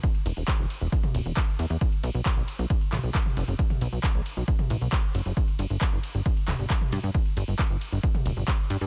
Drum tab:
RD |x-x-x-x-x-x-x-x-|x-x-x-x-x-x-x-x-|x-x-x-x-x-x-x-x-|x-x-x-x-x-x-x-x-|
HH |xxoxxxoxxxoxxxox|xxoxxxoxxxoxxxox|xxoxxxoxxxoxxxox|xxoxxxoxxxoxxxox|
CP |----x-------x---|----x-----x-x---|----x-------x---|----x-----x-x---|
T2 |---------o------|----------o--o--|-o-------o------|----------o--o--|
BD |o---o---o---o---|o---o---o---o---|o---o---o---o---|o---o---o---o---|

RD |x-x-x-x-x-x-x-x-|
HH |xxoxxxoxxxoxxxox|
CP |----x-------x---|
T2 |---------o------|
BD |o---o---o---o---|